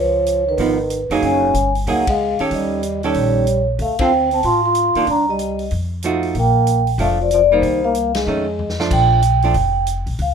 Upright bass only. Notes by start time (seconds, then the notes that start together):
Already playing: C#2
0.58 G#1
1.10 F1
1.22 F#1
1.54 G1
1.87 C#2
2.40 muted upright bass stroke
2.51 D#2
3.15 A#1
3.79 D2
4.43 A2
4.95 muted upright bass stroke
5.07 C2
5.71 F2
6.35 A#1
6.98 F1
7.62 C2
8.26 F2
8.91 A#1
9.54 F1
10.06 A#1
10.19 C#2